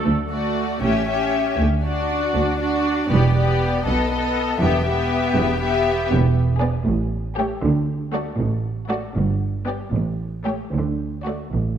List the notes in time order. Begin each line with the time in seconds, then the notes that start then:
0.05 D2
0.30 A3 F#4 D5
0.82 A1 A2 C#4 G4 E5
1.07 C#4 G4 E5
1.58 D2
1.84 D4 F#4 D5
2.34 D2
2.60 D4 F#4 D5
3.10 E1 E2 B3 G4 D5
3.35 B3 G4 D5
3.86 B1 B2 B3 A4 D#5
4.11 B3 A4 D#5
4.60 E1 E2 B3 G4 E5
4.87 B3 G4 E5
5.36 E1 E2
5.61 B3 G4 E5
6.11 E1 E2
6.61 B3 G#4 D5
6.87 A1 A2
7.37 A3 G4 C#5
7.63 D2 D3
8.14 A3 F#4 D5
8.39 A1 A2
8.89 A3 F#4 D5
9.15 G1 G2
9.67 B3 G4 D5
9.93 A1 A2
10.46 A3 G4 C#5
10.73 D2 D3
11.26 A3 F#4 D5
11.53 A1 A2